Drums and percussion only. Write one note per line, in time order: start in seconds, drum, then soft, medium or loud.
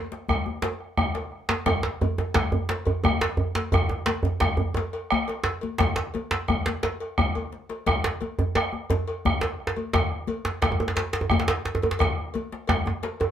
0.12 bombo rim soft
0.12 djembe slap medium
0.29 bombo rim medium
0.29 bombo low medium
0.29 cowbell soft
0.29 djembe slap soft
0.29 djembe bass medium
0.46 djembe tone medium
0.62 cowbell soft
0.62 djembe slap medium
0.80 bombo rim soft
0.97 bombo rim loud
0.97 bombo low loud
0.97 djembe tone medium
1.15 cowbell soft
1.15 djembe slap medium
1.32 bombo rim soft
1.49 cowbell soft
1.49 djembe slap loud
1.49 djembe tone medium
1.66 bombo rim medium
1.66 bombo low medium
1.66 cowbell medium
1.66 djembe slap medium
1.66 djembe bass medium
1.83 bombo rim soft
1.83 djembe slap medium
1.83 djembe slap soft
2.01 cowbell soft
2.01 djembe slap soft
2.01 djembe tone medium
2.01 djembe bass medium
2.18 bombo rim soft
2.18 djembe slap medium
2.18 djembe tone medium
2.34 bombo rim medium
2.34 bombo low medium
2.34 cowbell medium
2.34 djembe slap loud
2.34 djembe slap soft
2.34 djembe bass medium
2.52 djembe tone medium
2.52 djembe bass medium
2.69 cowbell medium
2.69 djembe slap medium
2.85 bombo rim soft
2.85 cowbell medium
2.85 djembe bass medium
3.04 bombo rim loud
3.04 bombo low loud
3.04 djembe tone medium
3.04 djembe bass medium
3.21 cowbell medium
3.21 djembe slap medium
3.21 djembe slap loud
3.37 bombo rim soft
3.37 djembe bass medium
3.55 cowbell soft
3.55 djembe slap medium
3.55 djembe tone medium
3.72 bombo rim loud
3.72 bombo low loud
3.72 cowbell medium
3.72 djembe slap medium
3.72 djembe bass medium
3.89 bombo rim soft
3.89 djembe slap soft
3.89 djembe tone medium
4.06 cowbell soft
4.06 djembe slap loud
4.06 djembe slap soft
4.06 djembe tone medium
4.23 bombo rim soft
4.23 djembe slap medium
4.23 djembe bass medium
4.40 bombo rim loud
4.40 bombo low loud
4.40 cowbell soft
4.40 djembe slap medium
4.42 djembe slap soft
4.42 djembe bass medium
4.57 djembe tone medium
4.57 djembe bass medium
4.74 cowbell medium
4.74 djembe slap medium
4.74 djembe tone medium
4.93 bombo rim soft
4.93 cowbell medium
5.11 bombo rim loud
5.11 djembe tone medium
5.11 djembe bass medium
5.28 cowbell medium
5.28 djembe slap medium
5.44 bombo rim soft
5.44 djembe slap loud
5.61 cowbell soft
5.61 djembe tone medium
5.78 bombo rim loud
5.78 bombo low loud
5.78 cowbell medium
5.78 djembe slap medium
5.80 djembe slap medium
5.80 djembe bass medium
5.96 bombo rim soft
5.96 djembe slap medium
6.14 cowbell soft
6.14 djembe tone medium
6.31 bombo rim soft
6.31 djembe slap loud
6.31 djembe slap medium
6.48 bombo rim medium
6.48 bombo low loud
6.48 cowbell soft
6.48 djembe bass medium
6.66 bombo rim soft
6.66 djembe slap medium
6.66 djembe tone medium
6.83 cowbell soft
6.83 djembe slap medium
7.00 bombo rim soft
7.00 cowbell soft
7.18 bombo rim loud
7.18 bombo low loud
7.18 djembe slap soft
7.18 djembe tone medium
7.18 djembe bass medium
7.35 cowbell soft
7.35 djembe bass soft
7.52 djembe slap soft
7.69 cowbell soft
7.69 djembe slap medium
7.86 bombo rim loud
7.86 bombo low loud
7.86 cowbell medium
7.86 djembe slap medium
7.86 djembe bass medium
8.04 bombo rim soft
8.04 djembe slap loud
8.04 djembe slap soft
8.21 cowbell soft
8.21 djembe slap soft
8.21 djembe tone medium
8.39 bombo rim soft
8.39 djembe slap medium
8.39 djembe bass medium
8.55 bombo rim loud
8.55 cowbell soft
8.55 djembe slap loud
8.55 djembe slap soft
8.55 djembe bass medium
8.73 djembe tone medium
8.90 cowbell medium
8.90 djembe slap medium
8.90 djembe bass medium
9.08 bombo rim soft
9.08 cowbell medium
9.25 bombo rim loud
9.25 bombo low loud
9.25 djembe tone medium
9.25 djembe bass medium
9.41 cowbell medium
9.41 djembe slap medium
9.43 djembe slap medium
9.60 bombo rim soft
9.67 djembe slap medium
9.76 cowbell soft
9.76 djembe tone medium
9.93 bombo rim loud
9.93 bombo low loud
9.93 cowbell medium
9.93 djembe slap medium
9.93 djembe bass medium
10.11 bombo rim soft
10.11 djembe slap soft
10.27 cowbell medium
10.27 djembe slap soft
10.27 djembe tone medium
10.45 bombo rim soft
10.45 djembe slap medium
10.62 bombo rim loud
10.62 bombo low loud
10.62 cowbell medium
10.62 djembe slap medium
10.62 djembe slap soft
10.62 djembe bass medium
10.72 djembe tone medium
10.80 djembe tone medium
10.88 djembe slap medium
10.96 cowbell medium
10.96 djembe slap loud
10.96 djembe slap medium
11.13 bombo rim soft
11.13 cowbell medium
11.13 djembe slap medium
11.21 djembe tone medium
11.30 bombo rim loud
11.30 bombo low loud
11.30 djembe tone medium
11.30 djembe bass medium
11.40 djembe slap medium
11.48 cowbell medium
11.48 djembe slap loud
11.48 djembe slap medium
11.65 bombo rim soft
11.65 djembe slap medium
11.75 djembe tone medium
11.82 cowbell medium
11.82 djembe tone medium
11.91 djembe slap medium
11.99 bombo rim loud
11.99 bombo low loud
11.99 cowbell medium
11.99 djembe slap medium
11.99 djembe bass medium
12.18 bombo rim soft
12.18 djembe slap soft
12.34 cowbell medium
12.34 djembe slap soft
12.34 djembe tone medium
12.52 bombo rim soft
12.52 djembe slap medium
12.67 bombo rim loud
12.67 bombo low loud
12.67 cowbell medium
12.67 djembe slap soft
12.67 djembe slap loud
12.67 djembe bass medium
12.86 djembe tone medium
13.03 cowbell medium
13.03 djembe slap medium
13.20 bombo rim soft
13.20 cowbell medium
13.20 djembe tone medium